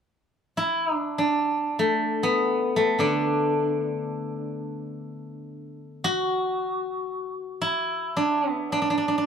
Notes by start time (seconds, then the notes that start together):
0.57 E4
0.93 D4
1.18 D4
1.79 A3
2.23 B3
2.76 A3
2.99 D3 D4
6.04 F#4
7.61 E4
8.17 D4
8.51 B3
8.72 D4
8.82 D4
8.90 D4
8.98 D4
9.08 D4
9.18 D4